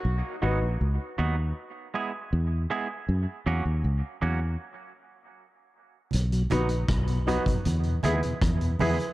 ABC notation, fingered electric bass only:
X:1
M:4/4
L:1/16
Q:1/4=79
K:B
V:1 name="Fingered electric bass" clef=bass
B,,, z G,,, A,,, C,, z D,,2 z4 E,,2 z2 | F,, z E,, D,, C,, z E,,2 z8 | B,,,2 A,,,2 B,,,3 z E,,2 D,, z E,,2 E,, z |]